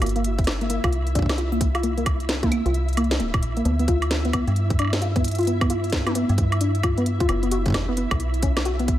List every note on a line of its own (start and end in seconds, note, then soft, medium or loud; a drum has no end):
0.00 0.79 G1 loud
0.00 0.14 A#3 medium
0.00 8.99 E4 medium
0.00 8.99 E5 medium
0.00 closed hi-hat medium
0.00 high woodblock soft
0.06 closed hi-hat soft
0.09 closed hi-hat soft
0.16 0.23 A#3 loud
0.16 closed hi-hat soft
0.24 closed hi-hat medium
0.39 kick loud
0.39 closed hi-hat soft
0.44 snare loud
0.44 closed hi-hat soft
0.47 closed hi-hat medium
0.47 high woodblock soft
0.52 closed hi-hat soft
0.61 0.69 A#3 loud
0.61 closed hi-hat soft
0.70 0.83 A#3 loud
0.70 closed hi-hat medium
0.84 2.61 C2 medium
0.84 0.92 F4 medium
0.84 kick loud
0.84 closed hi-hat soft
0.84 high woodblock medium
0.93 closed hi-hat medium
1.07 closed hi-hat soft
1.15 1.22 D4 medium
1.15 kick loud
1.15 closed hi-hat medium
1.19 kick medium
1.22 kick medium
1.26 kick medium
1.26 snare loud
1.26 closed hi-hat soft
1.26 high woodblock soft
1.38 1.51 F4 medium
1.38 closed hi-hat medium
1.52 1.59 A#3 medium
1.52 closed hi-hat soft
1.61 kick loud
1.61 closed hi-hat medium
1.75 1.83 F4 loud
1.75 closed hi-hat soft
1.75 high woodblock soft
1.83 1.96 A#3 medium
1.83 closed hi-hat medium
1.97 2.05 A#3 loud
1.97 closed hi-hat soft
2.06 kick loud
2.06 closed hi-hat medium
2.06 high woodblock medium
2.20 closed hi-hat soft
2.29 snare loud
2.29 closed hi-hat medium
2.43 2.50 A#3 loud
2.43 kick loud
2.43 closed hi-hat soft
2.43 high tom medium
2.52 2.65 A#3 loud
2.52 closed hi-hat medium
2.52 high woodblock medium
2.66 3.21 C2 medium
2.66 2.74 F4 medium
2.66 closed hi-hat soft
2.74 closed hi-hat medium
2.88 closed hi-hat soft
2.93 closed hi-hat soft
2.97 3.10 A#3 loud
2.97 closed hi-hat medium
2.97 high woodblock soft
3.04 closed hi-hat soft
3.11 snare loud
3.11 closed hi-hat soft
3.20 3.44 D1 medium
3.20 3.32 A#3 medium
3.20 closed hi-hat medium
3.34 3.42 A#2 loud
3.34 kick loud
3.34 closed hi-hat soft
3.34 high woodblock medium
3.43 3.62 A#1 medium
3.43 closed hi-hat medium
3.57 3.61 A#3 loud
3.57 closed hi-hat soft
3.65 4.43 D2 loud
3.65 3.78 B3 medium
3.65 closed hi-hat medium
3.79 3.87 B3 loud
3.79 closed hi-hat soft
3.88 4.01 F4 loud
3.88 kick loud
3.88 closed hi-hat medium
4.02 closed hi-hat soft
4.02 high woodblock soft
4.11 snare loud
4.11 closed hi-hat medium
4.25 4.32 B3 loud
4.25 closed hi-hat soft
4.33 4.47 B3 loud
4.33 kick loud
4.33 closed hi-hat medium
4.33 high woodblock medium
4.47 6.25 G2 medium
4.47 closed hi-hat soft
4.56 closed hi-hat medium
4.70 kick loud
4.70 closed hi-hat soft
4.79 4.86 D4 medium
4.79 closed hi-hat medium
4.79 high woodblock soft
4.82 high woodblock soft
4.90 snare loud
4.90 closed hi-hat soft
4.90 high woodblock soft
5.02 5.15 F4 medium
5.02 closed hi-hat medium
5.16 5.23 B3 loud
5.16 kick loud
5.16 closed hi-hat soft
5.24 closed hi-hat medium
5.28 closed hi-hat medium
5.31 closed hi-hat medium
5.35 closed hi-hat soft
5.38 5.47 F4 loud
5.38 closed hi-hat soft
5.41 closed hi-hat soft
5.43 closed hi-hat soft
5.45 5.60 B3 medium
5.45 closed hi-hat soft
5.47 closed hi-hat medium
5.61 5.69 B3 loud
5.61 kick loud
5.61 closed hi-hat soft
5.61 high woodblock medium
5.70 5.83 F4 loud
5.70 closed hi-hat medium
5.84 closed hi-hat soft
5.90 snare loud
5.90 closed hi-hat soft
5.92 kick medium
5.92 closed hi-hat medium
5.97 closed hi-hat soft
6.07 6.14 B3 loud
6.07 closed hi-hat soft
6.07 high tom medium
6.07 high woodblock soft
6.15 6.29 B3 loud
6.15 closed hi-hat medium
6.29 7.26 G2 medium
6.29 closed hi-hat soft
6.38 kick loud
6.38 closed hi-hat medium
6.52 closed hi-hat soft
6.52 high woodblock medium
6.61 6.68 D4 medium
6.61 closed hi-hat medium
6.75 closed hi-hat soft
6.83 6.97 F4 medium
6.83 kick loud
6.83 closed hi-hat medium
6.83 high woodblock medium
6.98 7.05 B3 loud
6.98 closed hi-hat soft
7.06 closed hi-hat medium
7.20 7.29 F4 loud
7.20 kick loud
7.20 closed hi-hat soft
7.29 8.07 F#1 loud
7.29 7.42 B3 medium
7.29 closed hi-hat medium
7.29 high woodblock medium
7.43 7.50 B3 loud
7.43 closed hi-hat soft
7.51 7.65 F#4 loud
7.51 closed hi-hat medium
7.66 kick medium
7.66 closed hi-hat soft
7.68 kick medium
7.70 kick medium
7.72 kick medium
7.72 snare loud
7.72 closed hi-hat medium
7.72 high woodblock medium
7.75 kick soft
7.78 kick soft
7.82 kick soft
7.85 7.96 B3 loud
7.85 kick soft
7.97 8.11 B3 loud
7.97 closed hi-hat medium
8.11 8.99 B1 medium
8.11 kick loud
8.11 closed hi-hat soft
8.11 high woodblock medium
8.20 closed hi-hat medium
8.34 closed hi-hat soft
8.42 8.50 C#4 medium
8.42 kick medium
8.42 closed hi-hat medium
8.57 snare loud
8.57 closed hi-hat soft
8.57 high woodblock medium
8.65 8.79 F#4 medium
8.65 closed hi-hat medium
8.79 8.87 B3 loud
8.79 closed hi-hat soft
8.88 kick loud
8.88 closed hi-hat medium